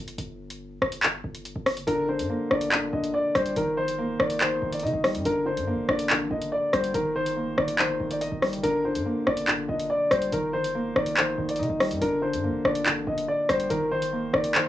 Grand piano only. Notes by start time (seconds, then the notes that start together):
1.88 D3
2.08 D3
2.30 A#3
2.51 D3
2.71 D3
2.93 D3
3.14 D5
3.35 G3
3.57 D#3
3.78 D#3
3.99 A#3
4.20 D#3
4.41 D#3
4.62 D#3
4.83 D#4
5.05 G3
5.26 D3
5.46 D3
5.67 A#3
5.89 D3
6.10 D3
6.31 D3
6.52 D5
6.73 G3
6.94 D#3
7.16 D#3
7.37 A#3
7.58 D#3
7.79 D#3
8.00 D#3
8.21 D#5
8.42 G3
8.64 D3
8.85 D3
9.06 A#3
9.27 D3
9.48 D3
9.69 D3
9.90 D5
10.12 G3
10.33 D#3
10.54 D#3
10.75 A#3
10.96 D#3
11.17 D#3
11.38 D#3
11.59 D#4
11.81 G3
12.02 D3
12.22 D3
12.44 A#3
12.65 D3
12.86 D3
13.07 D3
13.28 D5
13.49 G3
13.71 D#3
13.92 D#3
14.13 A#3
14.34 D#3
14.55 D#3